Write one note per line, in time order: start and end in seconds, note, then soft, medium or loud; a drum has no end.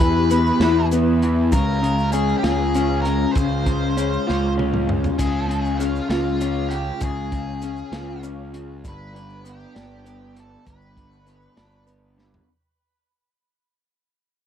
0.00 0.50 E2 loud
0.00 1.22 E3 medium
0.00 0.30 B3 medium
0.00 0.31 E4 medium
0.00 1.50 G4 medium
0.00 0.86 B4 medium
0.00 1.50 B4 medium
0.00 1.50 E5 medium
0.00 1.50 B5 medium
0.00 kick medium
0.31 0.91 B3 medium
0.31 closed hi-hat medium
0.31 maracas medium
0.46 maracas soft
0.60 1.54 E2 medium
0.60 1.53 E4 medium
0.60 snare medium
0.60 closed hi-hat medium
0.91 1.54 B3 medium
0.91 closed hi-hat medium
0.91 maracas medium
1.22 1.52 E3 medium
1.22 closed hi-hat medium
1.52 2.33 C#2 loud
1.52 1.82 C#3 medium
1.52 8.80 G#3 medium
1.52 8.80 C#4 medium
1.52 2.12 A#4 medium
1.52 8.80 F5 medium
1.52 kick loud
1.52 closed hi-hat medium
1.52 maracas medium
1.83 3.05 C#3 medium
1.83 closed hi-hat medium
1.99 maracas soft
2.12 2.75 C#4 medium
2.12 2.37 G#4 medium
2.12 closed hi-hat medium
2.12 maracas medium
2.29 maracas soft
2.38 3.01 G#4 medium
2.43 3.25 C#2 medium
2.43 4.26 F4 medium
2.43 snare medium
2.43 closed hi-hat medium
2.74 3.97 C#4 medium
2.74 closed hi-hat medium
2.74 maracas medium
3.02 3.32 A#4 medium
3.02 closed hi-hat medium
3.06 3.35 C#3 medium
3.31 4.52 C5 medium
3.31 closed hi-hat medium
3.36 4.17 C#2 loud
3.36 3.66 C#3 medium
3.36 kick loud
3.36 maracas medium
3.66 4.86 C#3 medium
3.66 kick medium
3.66 closed hi-hat medium
3.66 maracas soft
3.97 4.57 C#4 medium
3.97 closed hi-hat medium
3.97 maracas medium
4.13 maracas soft
4.27 5.09 C#2 medium
4.27 6.10 F4 medium
4.27 snare medium
4.58 5.79 C#4 medium
4.58 high tom medium
4.74 mid tom medium
4.87 5.17 C#3 medium
4.87 mid tom medium
5.04 floor tom medium
5.04 maracas soft
5.18 5.99 C#2 loud
5.18 5.47 C#3 medium
5.18 5.82 G#4 medium
5.18 kick loud
5.18 closed hi-hat medium
5.18 crash medium
5.18 maracas loud
5.48 6.71 C#3 medium
5.48 closed hi-hat medium
5.65 maracas soft
5.77 6.40 C#4 medium
5.77 6.08 F4 medium
5.77 closed hi-hat medium
5.77 maracas medium
5.96 maracas soft
6.10 6.90 C#2 medium
6.10 6.73 F4 medium
6.10 7.63 F4 medium
6.10 snare loud
6.10 closed hi-hat medium
6.41 7.62 C#4 medium
6.41 closed hi-hat medium
6.41 maracas medium
6.69 7.02 C#3 medium
6.69 6.98 G4 medium
6.69 closed hi-hat medium
7.00 7.82 C#2 loud
7.00 7.31 C#3 medium
7.00 8.20 G#4 medium
7.00 kick loud
7.00 closed hi-hat medium
7.00 maracas medium
7.32 8.53 C#3 medium
7.32 kick medium
7.32 closed hi-hat medium
7.62 8.22 C#4 medium
7.62 closed hi-hat medium
7.62 maracas medium
7.77 maracas soft
7.92 8.86 C#2 medium
7.92 8.84 F4 medium
7.92 snare medium
7.92 closed hi-hat medium
8.23 8.84 C#4 medium
8.23 closed hi-hat medium
8.23 maracas medium
8.54 8.84 C#3 medium
8.54 closed hi-hat medium
8.84 9.64 G1 loud
8.84 10.65 G2 medium
8.84 12.45 B4 medium
8.84 12.45 D5 medium
8.84 12.45 G5 medium
8.84 10.64 D6 medium
8.84 kick loud
8.84 closed hi-hat medium
8.84 maracas medium
8.88 9.49 B4 medium
9.14 10.34 D3 medium
9.14 closed hi-hat medium
9.30 maracas soft
9.44 10.04 B3 medium
9.44 closed hi-hat medium
9.44 maracas medium
9.49 10.34 G4 medium
9.60 maracas soft
9.75 10.56 G1 medium
9.75 11.27 D4 medium
9.75 snare loud
9.75 closed hi-hat medium
10.05 11.25 B3 medium
10.05 closed hi-hat medium
10.05 maracas medium
10.35 10.96 D3 medium
10.35 closed hi-hat medium
10.40 10.67 A4 medium
10.65 11.47 G1 loud
10.65 12.18 G2 medium
10.65 11.84 B4 medium
10.65 12.46 C#6 medium
10.65 kick loud
10.65 closed hi-hat medium
10.65 maracas medium
10.82 maracas soft
10.97 12.16 D3 medium
10.97 kick medium
10.97 closed hi-hat medium
11.12 maracas soft
11.27 11.86 B3 medium
11.27 closed hi-hat medium
11.27 maracas medium
11.42 maracas soft
11.57 12.37 G1 medium
11.57 12.48 D4 medium
11.57 snare loud
11.57 closed hi-hat medium
11.72 maracas soft
11.87 12.48 B3 medium
11.87 closed hi-hat medium
11.87 maracas medium
12.18 12.48 D3 medium
12.18 snare medium
12.34 floor tom medium